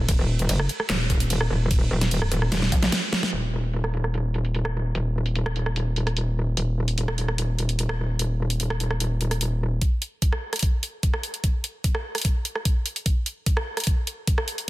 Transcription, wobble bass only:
0.09 0.17 D#1 loud
0.19 0.48 D#1 loud
0.49 0.68 F#1 loud
0.90 1.08 D#1 loud
1.10 1.49 D#1 loud
1.50 1.89 D#1 loud
1.91 2.30 D#1 loud
2.32 2.71 D#1 loud
2.72 2.91 A#1 loud
3.33 4.93 D#1 medium
4.95 6.55 D#1 medium
6.57 9.80 D#1 medium

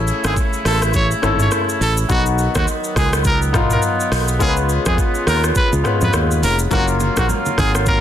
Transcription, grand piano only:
0.00 0.58 C#4 loud
0.00 0.59 E4 medium
0.00 0.60 A4 loud
1.22 2.04 C#4 medium
1.22 2.05 E4 medium
1.22 2.06 A4 medium
2.09 3.18 B3 medium
2.09 3.19 D#4 medium
2.09 3.19 F#4 medium
3.53 4.35 B3 medium
3.53 4.36 D#4 medium
3.53 4.36 F4 medium
4.39 5.49 G#3 medium
4.39 5.49 B3 medium
4.39 5.50 C#4 medium
4.39 5.50 F4 medium
4.39 4.49 A#4 medium
4.48 5.53 B4 medium
5.84 6.66 G#3 medium
5.84 6.66 B3 medium
5.84 6.67 C#4 medium
5.84 6.67 F4 medium
5.84 6.67 B4 medium
6.70 7.80 F#3 medium
6.70 7.80 A#3 medium
6.70 7.80 C#4 medium
6.70 7.81 F4 medium
6.70 7.81 A#4 medium

